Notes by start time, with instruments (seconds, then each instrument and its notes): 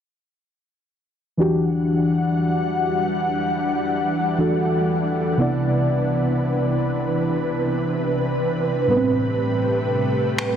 1.37 synth keys E3 D4 F#4 G4, ambient pad E3 G3 D4 F#5
4.38 synth keys E3 D4 F#4 A4
5.37 synth keys C3 B3 E4 D5, ambient pad C3 B4
8.87 synth keys A2 G3 B3 B4, ambient pad A3 G4
8.96 synth keys C4
10.38 finger snap